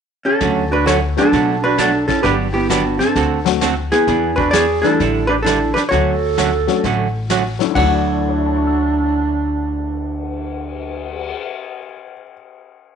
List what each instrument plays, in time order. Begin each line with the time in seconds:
0.25 hollow-body jazz guitar C#4 A4
0.41 upright bass D2, hollow-body jazz guitar D3 F#3 A3 C#4 F#4, brush sweep, kick, snare
0.71 hollow-body jazz guitar D4 B4, clarinet F#4
0.86 hollow-body jazz guitar D3 F#3 A3 C#4 F#4 C#5, clarinet A4, kick, snare, hi-hat pedal
1.17 honky-tonk piano F#3 A3 B3 D4 F#4, clarinet D4, hollow-body jazz guitar D4 A4, snare
1.32 upright bass B1, hollow-body jazz guitar B2 F#3 A3 D4 F#4, brush sweep, kick, snare
1.64 hollow-body jazz guitar D4 B4, clarinet F#4
1.78 hollow-body jazz guitar B2 F#3 A3 D4 F#4 A4, clarinet D4, kick, snare, hi-hat pedal
2.08 hollow-body jazz guitar C#4 A4, clarinet E4, kick, snare
2.22 upright bass G1, hollow-body jazz guitar D3 F#3 B3 D4 G4 B4, clarinet G4, brush sweep, kick, snare
2.52 hollow-body jazz guitar B3 G4, clarinet E4
2.70 hollow-body jazz guitar D3 F#3 B3 D4 F#4 G4, clarinet D4, kick, snare, hi-hat pedal
2.99 hollow-body jazz guitar C4 A4, clarinet D4, snare
3.16 upright bass D2, hollow-body jazz guitar D3 A3 C4 F#4 A4, brush sweep, kick, snare
3.45 honky-tonk piano F#3 A3 C4 D4 F#4, snare
3.61 hollow-body jazz guitar D3 A3 C4 F#4 A4, kick, snare, hi-hat pedal
3.92 hollow-body jazz guitar B3 G#4, clarinet E4, snare
4.07 upright bass E2, hollow-body jazz guitar E3 B3 D4 G#4, brush sweep, kick, snare
4.36 hollow-body jazz guitar D4 B4, clarinet F#4, kick
4.51 hollow-body jazz guitar E3 B3 D4 G#4 D5, clarinet G#4, kick, snare, hi-hat pedal
4.82 honky-tonk piano E3 G3 A3 D4 E4, hollow-body jazz guitar D4 A4, clarinet E4, snare
5.00 upright bass A1, hollow-body jazz guitar D3 G3 D4 E4 A4, brush sweep, kick, snare
5.27 hollow-body jazz guitar D4 B4, clarinet G4
5.42 hollow-body jazz guitar G3 D4 A4, clarinet E4, kick, snare, hi-hat pedal
5.47 hollow-body jazz guitar D3 D4 E4 A4
5.74 hollow-body jazz guitar D4 B4, clarinet G4, snare
5.89 upright bass D2, hollow-body jazz guitar D3 F#3 F#4 C#5, clarinet A4, brush sweep, kick, snare
5.93 hollow-body jazz guitar A3 C#4 F#4
6.38 hollow-body jazz guitar D3 F#3 A3 C#4 F#4, kick, snare, hi-hat pedal
6.67 honky-tonk piano F#3 A3 C#4 D4 F#4, snare
6.83 upright bass A1, hollow-body jazz guitar D3 F#3 A3 C#4 F#4, brush sweep, kick, snare
7.29 hollow-body jazz guitar D3 F#3 A3 C#4 F#4, kick, snare, hi-hat pedal
7.59 honky-tonk piano D2 F#3 A3 C#4 D4 E4, snare
7.70 honky-tonk piano D3
7.75 upright bass D2, hollow-body jazz guitar D3 F#3 A3 F#4 F#5, clarinet D4, honky-tonk piano D4, kick, crash
7.82 honky-tonk piano E4
7.88 honky-tonk piano F#4
8.06 cymbal swell
8.21 honky-tonk piano A4
8.29 honky-tonk piano C#5
8.37 honky-tonk piano E5
8.46 honky-tonk piano A5
8.56 honky-tonk piano C#6
8.67 honky-tonk piano E6
8.78 honky-tonk piano A6